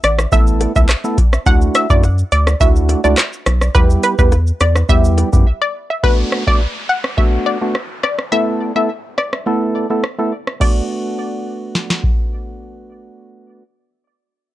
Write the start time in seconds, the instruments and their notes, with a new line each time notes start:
0.03 analog synth bass A1, synth pluck D5, cross-stick, closed hi-hat, shaker
0.19 cross-stick, high bongo, shaker
0.32 analog synth bass A1, synth stab A3 B3 E4 A4, synth pluck E5, kick, shaker
0.47 shaker
0.61 closed hi-hat, high bongo, shaker
0.76 analog synth bass C#2, synth stab A3 B3 E4 A4, synth pluck E5, kick, shaker
0.89 cross-stick, clap, shaker
1.04 synth stab A3 B3 E4 A4, shaker
1.18 kick, closed hi-hat, low bongo, shaker
1.33 cross-stick, shaker
1.46 analog synth bass D2, synth stab A3 D4 E4 F#4, synth pluck F#5, kick, shaker
1.62 shaker
1.75 synth pluck E5, cross-stick, closed hi-hat, high bongo, shaker
1.90 analog synth bass F#2, synth stab A3 D4 E4 F#4, synth pluck D5, kick, shaker
2.03 high bongo, shaker
2.18 shaker
2.32 analog synth bass D2, synth pluck D5, closed hi-hat, shaker
2.47 cross-stick, high bongo, shaker
2.60 analog synth bass D2, synth stab A3 D4 E4 F#4, synth pluck E5, kick, shaker
2.76 shaker
2.89 closed hi-hat, high bongo, shaker
3.04 analog synth bass C#2, synth stab A3 D4 E4 F#4, synth pluck D5, shaker
3.18 cross-stick, clap, shaker
3.33 shaker
3.46 analog synth bass B1, cross-stick, closed hi-hat, low bongo, shaker
3.61 cross-stick, shaker
3.75 analog synth bass E2, synth stab G3 B3 E4 G4, synth pluck B4, kick, shaker
3.90 shaker
4.03 synth pluck B4, closed hi-hat, high bongo, shaker
4.18 analog synth bass E2, synth stab G3 B3 E4 G4, synth pluck B4, kick, shaker
4.32 high bongo, shaker
4.47 shaker
4.61 analog synth bass E2, synth pluck D5, cross-stick, closed hi-hat, high bongo, shaker
4.76 cross-stick, high bongo, shaker
4.89 analog synth bass E2, synth stab G3 B3 E4 G4, synth pluck E5, kick, shaker
5.04 shaker
5.18 closed hi-hat, high bongo, shaker
5.33 analog synth bass F#2, synth stab G3 B3 E4 G4, kick, shaker
5.62 synth pluck D5
5.90 synth pluck E5
6.03 synth stab A3 B3 D4 F#4, synth pluck B4, kick, downlifter
6.32 cross-stick
6.47 synth stab A3 B3 D4 F#4, synth pluck D5, kick
6.89 synth pluck F#5
7.04 cross-stick
7.17 synth stab A3 B3 D4 F#4, synth pluck E5, kick
7.46 synth pluck D5
7.61 synth stab A3 B3 D4 F#4
7.75 cross-stick
8.03 synth pluck D5, cross-stick
8.19 cross-stick
8.32 synth stab A3 B3 E4 A4, synth pluck E5
8.76 synth stab A3 B3 E4 A4, synth pluck E5
9.18 synth pluck D5, cross-stick
9.33 cross-stick
9.46 synth stab A3 B3 E4 A4
9.90 synth stab A3 B3 E4 A4
10.04 cross-stick
10.19 synth stab A3 B3 E4 A4
10.47 cross-stick
10.60 synth stab A3 B3 D4 F#4, synth pluck D5, kick, crash
11.75 snare
11.90 snare
12.04 kick